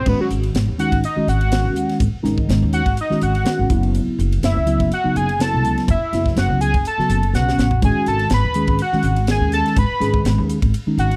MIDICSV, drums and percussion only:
0, 0, Header, 1, 2, 480
1, 0, Start_track
1, 0, Tempo, 485044
1, 62, Time_signature, 4, 2, 24, 8
1, 11048, End_track
2, 0, Start_track
2, 0, Title_t, "Drums"
2, 61, Note_on_c, 9, 36, 107
2, 62, Note_on_c, 9, 49, 92
2, 160, Note_off_c, 9, 36, 0
2, 161, Note_off_c, 9, 49, 0
2, 301, Note_on_c, 9, 44, 77
2, 301, Note_on_c, 9, 51, 61
2, 400, Note_off_c, 9, 44, 0
2, 400, Note_off_c, 9, 51, 0
2, 429, Note_on_c, 9, 51, 62
2, 528, Note_off_c, 9, 51, 0
2, 540, Note_on_c, 9, 44, 75
2, 540, Note_on_c, 9, 51, 83
2, 551, Note_on_c, 9, 38, 103
2, 639, Note_off_c, 9, 44, 0
2, 639, Note_off_c, 9, 51, 0
2, 650, Note_off_c, 9, 38, 0
2, 783, Note_on_c, 9, 44, 89
2, 783, Note_on_c, 9, 51, 68
2, 882, Note_off_c, 9, 44, 0
2, 882, Note_off_c, 9, 51, 0
2, 912, Note_on_c, 9, 36, 77
2, 916, Note_on_c, 9, 51, 60
2, 1011, Note_off_c, 9, 36, 0
2, 1015, Note_off_c, 9, 51, 0
2, 1025, Note_on_c, 9, 44, 79
2, 1025, Note_on_c, 9, 51, 83
2, 1123, Note_off_c, 9, 44, 0
2, 1123, Note_off_c, 9, 51, 0
2, 1267, Note_on_c, 9, 44, 77
2, 1267, Note_on_c, 9, 51, 61
2, 1366, Note_off_c, 9, 44, 0
2, 1366, Note_off_c, 9, 51, 0
2, 1393, Note_on_c, 9, 51, 62
2, 1492, Note_off_c, 9, 51, 0
2, 1500, Note_on_c, 9, 44, 75
2, 1500, Note_on_c, 9, 51, 90
2, 1511, Note_on_c, 9, 38, 105
2, 1599, Note_off_c, 9, 44, 0
2, 1599, Note_off_c, 9, 51, 0
2, 1610, Note_off_c, 9, 38, 0
2, 1741, Note_on_c, 9, 44, 81
2, 1741, Note_on_c, 9, 51, 56
2, 1840, Note_off_c, 9, 44, 0
2, 1840, Note_off_c, 9, 51, 0
2, 1874, Note_on_c, 9, 51, 60
2, 1884, Note_on_c, 9, 38, 29
2, 1973, Note_off_c, 9, 51, 0
2, 1981, Note_on_c, 9, 36, 106
2, 1983, Note_off_c, 9, 38, 0
2, 1985, Note_on_c, 9, 44, 82
2, 1985, Note_on_c, 9, 51, 78
2, 2080, Note_off_c, 9, 36, 0
2, 2084, Note_off_c, 9, 44, 0
2, 2084, Note_off_c, 9, 51, 0
2, 2231, Note_on_c, 9, 44, 83
2, 2231, Note_on_c, 9, 51, 61
2, 2242, Note_on_c, 9, 38, 30
2, 2330, Note_off_c, 9, 44, 0
2, 2330, Note_off_c, 9, 51, 0
2, 2341, Note_off_c, 9, 38, 0
2, 2352, Note_on_c, 9, 36, 75
2, 2451, Note_off_c, 9, 36, 0
2, 2467, Note_on_c, 9, 44, 80
2, 2467, Note_on_c, 9, 51, 78
2, 2478, Note_on_c, 9, 38, 105
2, 2566, Note_off_c, 9, 44, 0
2, 2566, Note_off_c, 9, 51, 0
2, 2577, Note_off_c, 9, 38, 0
2, 2699, Note_on_c, 9, 44, 89
2, 2699, Note_on_c, 9, 51, 64
2, 2798, Note_off_c, 9, 44, 0
2, 2798, Note_off_c, 9, 51, 0
2, 2829, Note_on_c, 9, 36, 78
2, 2831, Note_on_c, 9, 51, 57
2, 2928, Note_off_c, 9, 36, 0
2, 2930, Note_off_c, 9, 51, 0
2, 2939, Note_on_c, 9, 44, 82
2, 2939, Note_on_c, 9, 51, 72
2, 3038, Note_off_c, 9, 44, 0
2, 3038, Note_off_c, 9, 51, 0
2, 3083, Note_on_c, 9, 38, 29
2, 3180, Note_on_c, 9, 44, 87
2, 3180, Note_on_c, 9, 51, 61
2, 3182, Note_off_c, 9, 38, 0
2, 3279, Note_off_c, 9, 44, 0
2, 3279, Note_off_c, 9, 51, 0
2, 3312, Note_on_c, 9, 51, 57
2, 3411, Note_off_c, 9, 51, 0
2, 3418, Note_on_c, 9, 44, 88
2, 3418, Note_on_c, 9, 51, 73
2, 3429, Note_on_c, 9, 38, 106
2, 3517, Note_off_c, 9, 44, 0
2, 3517, Note_off_c, 9, 51, 0
2, 3528, Note_off_c, 9, 38, 0
2, 3661, Note_on_c, 9, 36, 101
2, 3664, Note_on_c, 9, 44, 83
2, 3664, Note_on_c, 9, 51, 55
2, 3760, Note_off_c, 9, 36, 0
2, 3763, Note_off_c, 9, 44, 0
2, 3763, Note_off_c, 9, 51, 0
2, 3791, Note_on_c, 9, 51, 52
2, 3890, Note_off_c, 9, 51, 0
2, 3905, Note_on_c, 9, 44, 81
2, 3905, Note_on_c, 9, 51, 80
2, 4004, Note_off_c, 9, 44, 0
2, 4004, Note_off_c, 9, 51, 0
2, 4151, Note_on_c, 9, 44, 83
2, 4151, Note_on_c, 9, 51, 57
2, 4250, Note_off_c, 9, 44, 0
2, 4250, Note_off_c, 9, 51, 0
2, 4279, Note_on_c, 9, 51, 60
2, 4378, Note_off_c, 9, 51, 0
2, 4384, Note_on_c, 9, 44, 79
2, 4384, Note_on_c, 9, 51, 82
2, 4395, Note_on_c, 9, 38, 113
2, 4483, Note_off_c, 9, 44, 0
2, 4483, Note_off_c, 9, 51, 0
2, 4494, Note_off_c, 9, 38, 0
2, 4618, Note_on_c, 9, 44, 89
2, 4618, Note_on_c, 9, 51, 62
2, 4717, Note_off_c, 9, 44, 0
2, 4717, Note_off_c, 9, 51, 0
2, 4748, Note_on_c, 9, 51, 54
2, 4751, Note_on_c, 9, 36, 84
2, 4847, Note_off_c, 9, 51, 0
2, 4850, Note_off_c, 9, 36, 0
2, 4864, Note_on_c, 9, 44, 75
2, 4864, Note_on_c, 9, 51, 77
2, 4963, Note_off_c, 9, 44, 0
2, 4963, Note_off_c, 9, 51, 0
2, 5106, Note_on_c, 9, 44, 79
2, 5106, Note_on_c, 9, 51, 61
2, 5205, Note_off_c, 9, 44, 0
2, 5205, Note_off_c, 9, 51, 0
2, 5234, Note_on_c, 9, 51, 63
2, 5333, Note_off_c, 9, 51, 0
2, 5346, Note_on_c, 9, 44, 85
2, 5346, Note_on_c, 9, 51, 86
2, 5357, Note_on_c, 9, 38, 109
2, 5445, Note_off_c, 9, 44, 0
2, 5445, Note_off_c, 9, 51, 0
2, 5456, Note_off_c, 9, 38, 0
2, 5587, Note_on_c, 9, 44, 81
2, 5587, Note_on_c, 9, 51, 59
2, 5686, Note_off_c, 9, 44, 0
2, 5686, Note_off_c, 9, 51, 0
2, 5716, Note_on_c, 9, 51, 59
2, 5727, Note_on_c, 9, 38, 31
2, 5815, Note_off_c, 9, 51, 0
2, 5822, Note_on_c, 9, 36, 106
2, 5824, Note_on_c, 9, 44, 83
2, 5824, Note_on_c, 9, 51, 91
2, 5825, Note_off_c, 9, 38, 0
2, 5921, Note_off_c, 9, 36, 0
2, 5923, Note_off_c, 9, 44, 0
2, 5923, Note_off_c, 9, 51, 0
2, 6067, Note_on_c, 9, 44, 82
2, 6067, Note_on_c, 9, 51, 63
2, 6077, Note_on_c, 9, 38, 31
2, 6166, Note_off_c, 9, 44, 0
2, 6166, Note_off_c, 9, 51, 0
2, 6176, Note_off_c, 9, 38, 0
2, 6192, Note_on_c, 9, 36, 75
2, 6208, Note_on_c, 9, 38, 32
2, 6291, Note_off_c, 9, 36, 0
2, 6300, Note_on_c, 9, 44, 85
2, 6300, Note_on_c, 9, 51, 82
2, 6307, Note_off_c, 9, 38, 0
2, 6311, Note_on_c, 9, 38, 105
2, 6399, Note_off_c, 9, 44, 0
2, 6399, Note_off_c, 9, 51, 0
2, 6410, Note_off_c, 9, 38, 0
2, 6540, Note_on_c, 9, 44, 92
2, 6540, Note_on_c, 9, 51, 63
2, 6639, Note_off_c, 9, 44, 0
2, 6639, Note_off_c, 9, 51, 0
2, 6671, Note_on_c, 9, 36, 74
2, 6671, Note_on_c, 9, 51, 61
2, 6770, Note_off_c, 9, 36, 0
2, 6770, Note_off_c, 9, 51, 0
2, 6779, Note_on_c, 9, 44, 80
2, 6779, Note_on_c, 9, 51, 73
2, 6878, Note_off_c, 9, 44, 0
2, 6878, Note_off_c, 9, 51, 0
2, 6923, Note_on_c, 9, 38, 28
2, 7021, Note_on_c, 9, 44, 85
2, 7021, Note_on_c, 9, 51, 64
2, 7022, Note_off_c, 9, 38, 0
2, 7120, Note_off_c, 9, 44, 0
2, 7120, Note_off_c, 9, 51, 0
2, 7155, Note_on_c, 9, 51, 61
2, 7253, Note_off_c, 9, 51, 0
2, 7263, Note_on_c, 9, 44, 82
2, 7274, Note_on_c, 9, 38, 59
2, 7362, Note_off_c, 9, 44, 0
2, 7373, Note_off_c, 9, 38, 0
2, 7408, Note_on_c, 9, 38, 60
2, 7504, Note_on_c, 9, 44, 82
2, 7507, Note_off_c, 9, 38, 0
2, 7515, Note_on_c, 9, 38, 85
2, 7603, Note_off_c, 9, 44, 0
2, 7614, Note_off_c, 9, 38, 0
2, 7629, Note_on_c, 9, 43, 81
2, 7728, Note_off_c, 9, 43, 0
2, 7742, Note_on_c, 9, 36, 105
2, 7743, Note_on_c, 9, 44, 86
2, 7743, Note_on_c, 9, 51, 73
2, 7841, Note_off_c, 9, 36, 0
2, 7842, Note_off_c, 9, 44, 0
2, 7842, Note_off_c, 9, 51, 0
2, 7978, Note_on_c, 9, 44, 83
2, 7978, Note_on_c, 9, 51, 60
2, 8077, Note_off_c, 9, 44, 0
2, 8077, Note_off_c, 9, 51, 0
2, 8106, Note_on_c, 9, 51, 59
2, 8205, Note_off_c, 9, 51, 0
2, 8210, Note_on_c, 9, 44, 86
2, 8210, Note_on_c, 9, 51, 80
2, 8221, Note_on_c, 9, 38, 115
2, 8309, Note_off_c, 9, 44, 0
2, 8309, Note_off_c, 9, 51, 0
2, 8320, Note_off_c, 9, 38, 0
2, 8451, Note_on_c, 9, 44, 92
2, 8451, Note_on_c, 9, 51, 64
2, 8550, Note_off_c, 9, 44, 0
2, 8550, Note_off_c, 9, 51, 0
2, 8583, Note_on_c, 9, 51, 55
2, 8589, Note_on_c, 9, 36, 85
2, 8682, Note_off_c, 9, 51, 0
2, 8688, Note_off_c, 9, 36, 0
2, 8695, Note_on_c, 9, 44, 81
2, 8695, Note_on_c, 9, 51, 81
2, 8794, Note_off_c, 9, 44, 0
2, 8794, Note_off_c, 9, 51, 0
2, 8833, Note_on_c, 9, 38, 31
2, 8931, Note_on_c, 9, 44, 82
2, 8931, Note_on_c, 9, 51, 60
2, 8932, Note_off_c, 9, 38, 0
2, 9030, Note_off_c, 9, 44, 0
2, 9030, Note_off_c, 9, 51, 0
2, 9067, Note_on_c, 9, 51, 62
2, 9166, Note_off_c, 9, 51, 0
2, 9175, Note_on_c, 9, 44, 86
2, 9175, Note_on_c, 9, 51, 84
2, 9186, Note_on_c, 9, 38, 105
2, 9274, Note_off_c, 9, 44, 0
2, 9274, Note_off_c, 9, 51, 0
2, 9285, Note_off_c, 9, 38, 0
2, 9420, Note_on_c, 9, 44, 79
2, 9420, Note_on_c, 9, 51, 56
2, 9431, Note_on_c, 9, 38, 32
2, 9519, Note_off_c, 9, 44, 0
2, 9519, Note_off_c, 9, 51, 0
2, 9530, Note_off_c, 9, 38, 0
2, 9555, Note_on_c, 9, 51, 59
2, 9566, Note_on_c, 9, 38, 31
2, 9654, Note_off_c, 9, 51, 0
2, 9662, Note_on_c, 9, 44, 87
2, 9662, Note_on_c, 9, 51, 85
2, 9664, Note_on_c, 9, 36, 111
2, 9665, Note_off_c, 9, 38, 0
2, 9761, Note_off_c, 9, 44, 0
2, 9761, Note_off_c, 9, 51, 0
2, 9763, Note_off_c, 9, 36, 0
2, 9909, Note_on_c, 9, 44, 83
2, 9909, Note_on_c, 9, 51, 67
2, 9920, Note_on_c, 9, 38, 35
2, 10008, Note_off_c, 9, 44, 0
2, 10008, Note_off_c, 9, 51, 0
2, 10019, Note_off_c, 9, 38, 0
2, 10031, Note_on_c, 9, 36, 80
2, 10130, Note_off_c, 9, 36, 0
2, 10144, Note_on_c, 9, 44, 78
2, 10144, Note_on_c, 9, 51, 82
2, 10155, Note_on_c, 9, 38, 103
2, 10243, Note_off_c, 9, 44, 0
2, 10243, Note_off_c, 9, 51, 0
2, 10254, Note_off_c, 9, 38, 0
2, 10385, Note_on_c, 9, 44, 93
2, 10385, Note_on_c, 9, 51, 72
2, 10484, Note_off_c, 9, 44, 0
2, 10484, Note_off_c, 9, 51, 0
2, 10513, Note_on_c, 9, 36, 88
2, 10516, Note_on_c, 9, 51, 63
2, 10612, Note_off_c, 9, 36, 0
2, 10615, Note_off_c, 9, 51, 0
2, 10628, Note_on_c, 9, 44, 82
2, 10628, Note_on_c, 9, 51, 90
2, 10727, Note_off_c, 9, 44, 0
2, 10727, Note_off_c, 9, 51, 0
2, 10870, Note_on_c, 9, 44, 86
2, 10870, Note_on_c, 9, 51, 65
2, 10969, Note_off_c, 9, 44, 0
2, 10969, Note_off_c, 9, 51, 0
2, 10997, Note_on_c, 9, 51, 62
2, 11048, Note_off_c, 9, 51, 0
2, 11048, End_track
0, 0, End_of_file